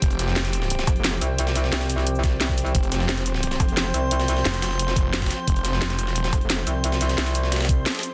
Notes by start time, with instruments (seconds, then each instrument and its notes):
Already playing: synth drone F3 C4 G4
0.02 detuned saw bass F1, kick, closed hi-hat
0.11 closed hi-hat, shaker
0.19 snare, closed hi-hat, shaker
0.28 snare
0.36 snare, closed hi-hat
0.45 snare, closed hi-hat
0.53 closed hi-hat, shaker
0.62 snare
0.70 closed hi-hat
0.79 snare, shaker
0.87 wobble bass F1, kick, closed hi-hat, shaker
0.96 closed hi-hat
1.04 snare, closed hi-hat
1.21 wobble bass C2, closed hi-hat, shaker
1.38 closed hi-hat
1.47 snare, shaker
1.56 snare, closed hi-hat, shaker
1.64 snare
1.72 wobble bass C2, snare, closed hi-hat, open hi-hat
1.81 snare, closed hi-hat
1.89 closed hi-hat, shaker
1.98 snare
2.07 closed hi-hat
2.15 shaker
2.24 kick, snare, closed hi-hat, shaker
2.41 snare, closed hi-hat
2.49 kick, snare
2.58 closed hi-hat, shaker
2.66 closed hi-hat
2.75 detuned saw bass F1, synth drone C5, kick, closed hi-hat
2.83 closed hi-hat, shaker
2.92 snare, closed hi-hat, shaker
3.00 snare
3.09 snare, closed hi-hat
3.17 snare, closed hi-hat
3.26 closed hi-hat, shaker
3.34 snare
3.43 closed hi-hat
3.51 snare, shaker
3.60 wobble bass F1, kick, closed hi-hat, shaker
3.69 closed hi-hat
3.77 snare, closed hi-hat
3.94 wobble bass C2, closed hi-hat, shaker
4.11 closed hi-hat
4.20 snare, shaker
4.28 snare, closed hi-hat, shaker
4.37 snare
4.45 detuned saw bass F1, snare, closed hi-hat, open hi-hat
4.54 snare, closed hi-hat
4.62 snare, closed hi-hat, shaker
4.71 snare
4.79 closed hi-hat
4.88 snare, shaker
4.96 kick, closed hi-hat, shaker
5.13 snare, closed hi-hat
5.22 kick, snare, closed hi-hat
5.26 snare, closed hi-hat
5.31 snare, closed hi-hat, shaker
5.47 detuned saw bass F1, kick, closed hi-hat
5.56 closed hi-hat, shaker
5.65 snare, closed hi-hat, shaker
5.73 snare
5.82 snare, closed hi-hat
5.90 snare, closed hi-hat
5.99 closed hi-hat, shaker
6.06 detuned saw bass E1, snare
6.16 closed hi-hat
6.24 snare, shaker
6.33 wobble bass F1, kick, closed hi-hat, shaker
6.41 closed hi-hat
6.50 snare, closed hi-hat
6.67 wobble bass C2, closed hi-hat, shaker
6.84 closed hi-hat
6.92 snare, shaker
7.01 snare, closed hi-hat, shaker
7.09 snare, closed hi-hat
7.18 wobble bass C2, snare, closed hi-hat, open hi-hat
7.26 snare, closed hi-hat, shaker
7.35 closed hi-hat, shaker
7.43 snare
7.52 snare, closed hi-hat
7.56 snare, closed hi-hat
7.61 snare, closed hi-hat, shaker
7.65 snare, closed hi-hat
7.69 kick, closed hi-hat, shaker
7.86 snare, closed hi-hat
7.90 snare, closed hi-hat
7.95 snare, closed hi-hat, shaker
7.99 snare, closed hi-hat
8.03 closed hi-hat, shaker